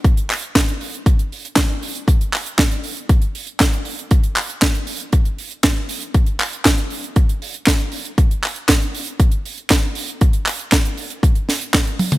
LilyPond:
\new DrumStaff \with { instrumentName = "Drums" } \drummode { \time 4/4 \tempo 4 = 118 <hh bd>16 hh16 <hc hho>16 hh16 <hc hh bd sn>16 hh16 hho16 hh16 <hh bd>16 hh16 hho16 hh16 <hc hh bd sn>8 hho16 hh16 | <hh bd>16 hh16 <hc hho>16 hh16 <hc hh bd sn>16 hh16 hho16 hh16 <hh bd>16 hh16 hho16 hh16 <hc hh bd sn>16 hh16 hho16 hh16 | <hh bd>16 hh16 <hc hho>16 hh16 <hc hh bd sn>16 hh16 hho16 hh16 <hh bd>16 hh16 hho16 hh16 <hc hh bd sn>8 hho16 hh16 | <hh bd>16 hh16 <hc hho>16 hh16 <hc hh bd sn>16 hh16 hho16 hh16 <hh bd>16 hh16 hho16 hh16 <hc hh bd sn>16 hh16 hho16 hh16 |
<hh bd>16 hh16 <hc hho>16 hh16 <hc hh bd sn>16 hh16 hho16 hh16 <hh bd>16 hh16 hho16 hh16 <hc hh bd sn>8 hho16 hh16 | <hh bd>16 hh16 <hc hho>16 hh16 <hc hh bd sn>16 hh16 hho16 hh16 <hh bd>16 hh16 <hho sn>16 hh16 <hc hh bd sn>16 hh16 <hho tommh>16 <hh toml>16 | }